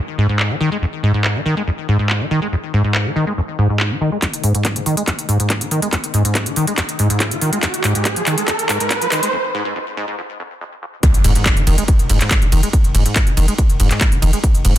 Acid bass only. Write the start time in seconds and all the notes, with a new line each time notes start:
0.18 G#2
0.29 G#2
0.50 F3
0.61 D#3
0.72 G#3
0.82 F2
1.03 G#2
1.14 G#2
1.35 F3
1.46 D#3
1.57 G#3
1.67 F2
1.88 G#2
2.21 F3
2.31 D#3
2.42 G#3
2.52 F2
2.73 G#2
2.84 G#2
3.06 F3
3.16 D#3
3.27 G#3
3.37 F2
3.58 G#2
3.70 G#2
3.91 F3
4.01 D#3
4.12 G#3
4.22 F2
4.44 G#2
4.55 G#2
4.76 F3
4.86 D#3
4.97 G#3
5.07 F2
5.29 G#2
5.40 G#2
5.61 F3
5.71 D#3
5.82 G#3
5.92 F2
6.14 G#2
6.25 G#2
6.46 F3
6.56 D#3
6.67 G#3
6.78 F2
6.99 G#2
7.10 G#2
7.31 F3
7.41 D#3
7.53 G#3
7.63 F2
7.84 G#2
7.95 G#2
8.16 F3
8.27 D#3
8.38 G#3
8.48 F2
8.69 G#2
8.80 G#2
9.01 F3
9.12 D#3
9.23 G#3
9.33 F2
9.54 G#2
9.75 F2
9.97 G#2
10.18 F2
10.39 F2
10.61 F2
10.82 F2
11.03 F2
11.24 G#2
11.36 G#2
11.57 F3
11.67 D#3
11.78 G#3
11.88 F2
12.10 G#2
12.21 G#2
12.42 F3
12.52 D#3
12.63 G#3
12.73 F2
12.95 G#2
13.05 G#2
13.27 F3
13.37 D#3
13.48 G#3
13.58 F2
13.79 G#2
13.91 G#2
14.12 F3
14.22 D#3
14.33 G#3
14.43 F2
14.65 G#2